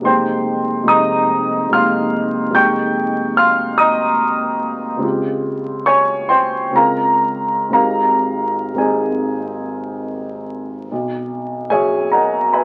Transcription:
0.00 0.82 F1 soft
0.00 0.83 G#3 soft
0.00 0.85 A#3 soft
0.00 0.86 D#4 soft
0.05 0.86 G4 soft
0.05 0.85 C5 soft
0.05 0.85 G5 soft
0.05 0.89 C6 medium
0.84 1.67 F1 soft
0.84 1.68 G#3 soft
0.84 1.69 A#3 soft
0.84 1.70 D#4 soft
0.88 1.71 G4 soft
0.88 1.70 D#5 medium
0.88 1.70 A#5 medium
0.88 1.74 D#6 medium
1.68 2.49 F1 soft
1.68 2.49 G#3 soft
1.68 2.51 A#3 soft
1.68 2.52 D#4 soft
1.73 2.53 G4 soft
1.73 2.52 F5 medium
1.73 2.52 C6 medium
1.73 2.56 F6 medium
2.50 4.96 F1 soft
2.50 4.96 G#3 soft
2.50 4.97 A#3 soft
2.50 4.98 D#4 soft
2.55 4.98 G4 soft
2.55 3.35 G5 medium
2.55 3.35 C#6 medium
2.55 3.38 G6 medium
3.37 3.77 F5 medium
3.37 3.77 C6 medium
3.37 3.79 F6 medium
3.78 4.98 D#5 medium
3.78 4.99 A#5 medium
3.78 5.02 D#6 medium
4.97 6.69 C#2 soft
4.97 6.69 G#3 soft
4.97 6.70 C4 soft
5.02 6.71 F4 soft
5.02 6.71 G4 soft
5.86 6.27 C#5 medium
5.86 6.27 G#5 medium
5.86 6.30 C#6 medium
6.29 6.73 C5 medium
6.29 6.72 G5 medium
6.29 6.75 C6 medium
6.71 7.69 C#2 soft
6.71 7.68 G#3 soft
6.71 7.70 C4 soft
6.71 7.71 F4 soft
6.76 7.72 G#4 soft
6.76 7.71 A#4 medium
6.76 7.71 F5 medium
6.76 7.72 A#5 medium
7.69 8.72 G#1 soft
7.69 8.73 G#3 soft
7.69 8.74 C4 soft
7.69 8.74 D#4 soft
7.73 8.75 G4 soft
7.73 8.75 A#4 medium
7.73 8.74 F5 medium
7.73 8.78 A#5 medium
8.73 10.84 G#1 soft
8.73 10.84 G#3 soft
8.73 10.85 C4 soft
8.73 10.85 D#4 soft
8.78 10.86 G4 soft
8.78 10.39 G#4 soft
8.78 10.39 D#5 soft
8.78 10.42 G#5 soft
10.92 12.64 B1 soft
11.70 12.64 F#2 soft
11.70 12.09 G#4 medium
11.70 12.10 C#5 medium
11.70 12.10 E5 medium
11.70 12.12 G#5 medium
12.11 12.52 A#4 soft
12.11 12.52 D#5 soft
12.11 12.52 F#5 soft
12.11 12.54 A#5 medium
12.53 12.64 B4 soft
12.53 12.64 E5 soft
12.53 12.64 G#5 soft
12.53 12.64 B5 medium

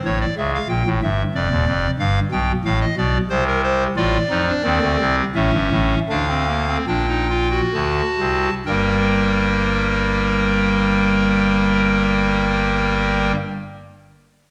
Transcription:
0.05 0.25 A1 medium
0.05 0.25 A2 medium
0.05 0.18 C#5 medium
0.21 0.35 D5 medium
0.37 0.57 C#2 medium
0.37 0.57 C#3 medium
0.37 0.51 E5 medium
0.54 0.68 F5 medium
0.69 0.83 A#1 medium
0.69 0.83 A#2 medium
0.69 0.89 G5 medium
0.86 1.00 A1 medium
0.86 1.00 A2 medium
1.03 1.23 G1 medium
1.03 1.23 G2 medium
1.03 1.23 E5 medium
1.35 1.49 F1 medium
1.35 1.49 F2 medium
1.35 1.91 D5 medium
1.50 1.65 D#1 medium
1.50 1.64 D#2 medium
1.67 1.87 F1 medium
1.67 1.87 F2 medium
1.99 2.20 G1 medium
1.99 2.19 G2 medium
1.99 2.20 F5 medium
2.32 2.52 B1 medium
2.32 2.52 B2 medium
2.32 2.52 G5 medium
2.65 2.85 A1 medium
2.65 2.85 A2 medium
2.65 2.79 F5 medium
2.81 2.95 D#5 medium
2.97 3.18 B1 medium
2.97 3.18 B2 medium
2.97 3.18 D5 medium
3.30 3.87 C2 medium
3.30 3.87 C3 medium
3.30 3.44 C5 medium
3.47 3.61 A#4 medium
3.64 3.84 C5 medium
3.96 4.17 A1 medium
3.96 4.17 A2 medium
3.96 4.17 F4 medium
3.96 5.16 D5 medium
4.30 4.51 F2 medium
4.30 4.51 F3 medium
4.30 4.45 D#4 medium
4.48 4.62 D4 medium
4.63 4.79 D#2 medium
4.63 4.79 D#3 medium
4.63 5.25 C4 medium
4.81 4.97 D2 medium
4.81 4.97 D3 medium
4.99 5.22 C2 medium
4.99 5.22 C3 medium
5.35 5.51 A1 medium
5.35 5.51 A2 medium
5.35 5.99 C#4 medium
5.35 5.99 E5 medium
5.53 5.69 G1 medium
5.53 5.69 G2 medium
5.71 5.95 A1 medium
5.71 5.95 A2 medium
6.09 6.78 D2 medium
6.09 6.77 D3 medium
6.09 6.26 D4 medium
6.09 6.77 F5 medium
6.29 6.46 C4 medium
6.48 6.65 A#3 medium
6.68 6.85 C4 medium
6.87 7.61 A#1 medium
6.87 7.61 A#2 medium
6.87 7.06 D4 medium
6.87 7.61 G5 medium
7.08 7.27 D#4 medium
7.29 7.48 F4 medium
7.51 8.50 F#4 medium
7.74 8.02 D2 medium
7.74 8.02 D3 medium
7.74 8.54 A5 medium
8.19 8.48 C2 medium
8.19 8.49 C3 medium
8.65 13.32 G1 medium
8.65 13.32 G2 medium
8.65 13.35 G3 medium
8.65 13.35 A#3 medium
8.65 13.32 A#4 medium
8.65 13.32 G5 medium

